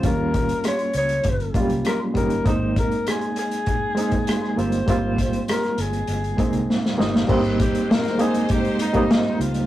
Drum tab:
CC |----------------|----------------|----------------|x---------------|
HH |x-xxxxxxxxxxx-xx|x-xxxxxxx-xxx-xx|x-xxxxxxxxxx----|-xxx-xxxxxxx--xx|
SD |----r-------r---|----r-------rr--|----rr------oooo|----oo------o---|
BD |o-o-----o-o---o-|o-o-----o--o----|o-o-------o-----|o-o-----o--o----|